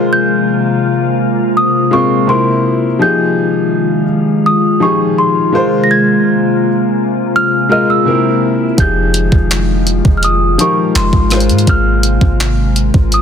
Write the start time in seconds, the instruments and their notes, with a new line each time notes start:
Already playing: ambient pad C3 G#3 A#3 F4, grand piano G#3 F4 A#4 C5
0.13 celesta G6
1.57 celesta D#6
1.91 grand piano G#3 C4 F4 A#4, celesta C#6
2.27 grand piano C3 C4 E4 A#4, celesta C6
2.99 ambient pad D#3 G#3 F4, grand piano F3 D#4 G4 G#4, celesta G6
4.46 celesta D#6
4.80 grand piano F3 D#4 G4 G#4, celesta C#6
5.18 celesta C6
5.52 ambient pad C3 A#3, grand piano G#3 F4 A#4 C5
5.84 celesta A#6
5.91 celesta G#6
7.36 celesta F6
7.69 grand piano G#3 F4 A#4 D#5, celesta F6
7.90 celesta E6
8.05 grand piano C3 C4 E4 A#4
8.78 808-style bass F1, ambient pad D#3 G#3 F4, grand piano F3 D#4 G4 G#4, celesta G6, kick, closed hi-hat
9.14 closed hi-hat
9.32 808-style bass F1, kick
9.51 clap, closed hi-hat
9.87 closed hi-hat
10.05 808-style bass F1, kick
10.17 celesta F6
10.23 celesta D#6, closed hi-hat
10.58 grand piano F3 D#4 G4 A#4, celesta C#6, closed hi-hat
10.95 808-style bass F1, celesta C6, clap, closed hi-hat
11.13 808-style bass G#1, kick
11.30 ambient pad C3 A#3, grand piano G#3 F4 A#4 C5, cross-stick, closed hi-hat, open hi-hat
11.40 closed hi-hat
11.49 808-style bass G#2, closed hi-hat
11.58 closed hi-hat
11.67 808-style bass G#1, celesta F6, kick, closed hi-hat
12.03 closed hi-hat
12.21 808-style bass G#1, kick
12.40 clap, closed hi-hat
12.76 closed hi-hat
12.94 808-style bass G#1, kick
13.12 celesta D#6, closed hi-hat